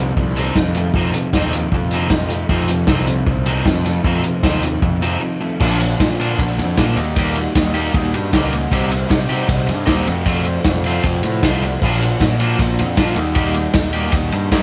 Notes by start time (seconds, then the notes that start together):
Already playing: C2 F2 C3 D#3 F3
0.00 C4
0.16 C2 C3 F3 C4, kick
0.36 D#3 F3 C4 D#4, closed hi-hat
0.55 F2 F3 C4 D#4, kick, snare
0.74 F3 A3 C4, closed hi-hat
0.94 F2 F3 C4 D#4, kick
1.13 C3 F3 C4, closed hi-hat
1.33 D#2 C3 F3 C4 D#4, kick, snare
1.53 D#3 F3 C4, closed hi-hat
1.72 F2 C3 F3 C4, kick
1.91 D#3 F3 C4, closed hi-hat
1.95 D#4
2.10 F2 F3 C4 D#4, kick, snare
2.29 F3 A3 C4, closed hi-hat
2.49 F2 F3 C4 D#4, kick
2.68 C3 F3 C4, closed hi-hat
2.87 C2 C3 F3 C4 D#4, kick, snare
3.07 D#3 F3 C4, closed hi-hat
3.26 C2 C3 F3 C4, kick
3.46 D#3 F3 C4 D#4, closed hi-hat
3.65 F2 F3 C4 D#4, kick, snare
3.85 F3 A3 C4, snare, closed hi-hat
4.04 F2 F3 C4 D#4, kick
4.23 C3 F3 C4, closed hi-hat
4.43 D#2 C3 F3 C4 D#4, kick, snare
4.63 D#3 F3 C4, closed hi-hat
4.82 F2 C3 F3 C4, kick
5.02 D#3 F3 C4 D#4, closed hi-hat
5.21 F3 C4 D#4
5.40 F3 A3 C4
5.60 A#1 A#2 D3 F3 A#3 D4, kick, crash
5.80 muted overdriven electric guitar stroke, ride
5.99 A#2 D3 F3 A#3 D4, muted overdriven electric guitar stroke, kick, snare, ride
6.20 F3 A#3 D4, ride
6.39 A#1 D3 F3 A#3 D4, muted overdriven electric guitar stroke, kick, ride
6.58 F2, muted overdriven electric guitar stroke, ride
6.77 A#2 D3 F3 A#3 D4, kick, snare, ride
6.97 D#2 D#3 G3 A#3 D#4, muted overdriven electric guitar stroke, ride
7.16 D#3 G3 A#3 D#4 G4, kick, ride
7.36 muted overdriven electric guitar stroke, ride
7.55 D#2 D#3 G3 A#3 D#4, muted overdriven electric guitar stroke, kick, snare, ride
7.74 G3 A#3 D#4 G4, ride
7.94 D#2 D#3 G3 A#3 D#4, muted overdriven electric guitar stroke, kick, ride
8.14 G2, muted overdriven electric guitar stroke, ride
8.31 C#2 D#3 G3 A#3 D#4, kick, snare, ride
8.35 G4
8.50 G3 A#3 D#4, muted overdriven electric guitar stroke, ride
8.71 C2 C3 G3 C4 D#4 G4, kick, ride
8.91 muted overdriven electric guitar stroke, ride
9.09 C3 G3 C4, muted overdriven electric guitar stroke, kick, snare, ride
9.14 D#4
9.29 G3 C4 D#4 G4, ride
9.48 C2 C3 G3 C4, muted overdriven electric guitar stroke, kick, ride
9.52 D#4
9.67 G2, muted overdriven electric guitar stroke, ride
9.86 D#2 C3 G3 C4 D#4 G4, kick, snare, ride
10.06 F2 C3 F3 A3 C4, muted overdriven electric guitar stroke, ride
10.25 F2 C3 F3 A3 C4 F4, kick, ride
10.45 muted overdriven electric guitar stroke, ride
10.64 F2 C3 F3 A3, muted overdriven electric guitar stroke, kick, snare, ride
10.69 C4
10.84 A3 C4 F4, ride
10.88 F3 A3
11.03 F2 C3 F3 A3 C4, muted overdriven electric guitar stroke, kick, ride
11.23 A2, muted overdriven electric guitar stroke, ride
11.43 C2 F2 C3 F3 A3 C4 F4, kick, snare, ride
11.62 F3 A3 C4, muted overdriven electric guitar stroke, ride
11.81 A#1 A#2 F3 A#3 D4, kick, crash
11.85 A#3 D4 F4
12.02 muted overdriven electric guitar stroke, ride
12.20 A#2 F3 A#3 D4, muted overdriven electric guitar stroke, kick, snare, ride
12.39 F3 A#3 D4 F4, ride
12.58 A#1 A#2 F3 A#3 D4, muted overdriven electric guitar stroke, kick, ride
12.79 F2, muted overdriven electric guitar stroke, ride
12.96 A#2 F3 A#3 D4 F4, kick, snare, ride
13.16 D#2 D#3 G3 A#3 D#4, muted overdriven electric guitar stroke, ride
13.35 D#3 G3 A#3 D#4 G4, kick, ride
13.54 muted overdriven electric guitar stroke, ride
13.73 D#2 D#3 G3 A#3 D#4, muted overdriven electric guitar stroke, kick, snare, ride
13.92 G3 A#3 D#4 G4, ride
14.11 D#2 D#3 G3 A#3 D#4, muted overdriven electric guitar stroke, kick, ride
14.32 G2, muted overdriven electric guitar stroke, ride
14.50 G2 D#3 G3 A#3 D#4 G4, kick, snare, ride